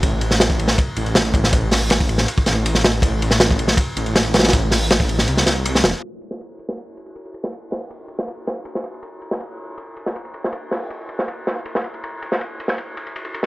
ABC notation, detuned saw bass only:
X:1
M:4/4
L:1/8
Q:1/4=160
K:Am
V:1 name="Detuned saw bass" clef=bass
A,,,4 z A,,,3 | A,,,4 z A,,,3 | A,,,4 z A,,,3 | A,,,4 C,, C,,2 E,,, |
z8 | z8 | z8 | z8 |
z8 |]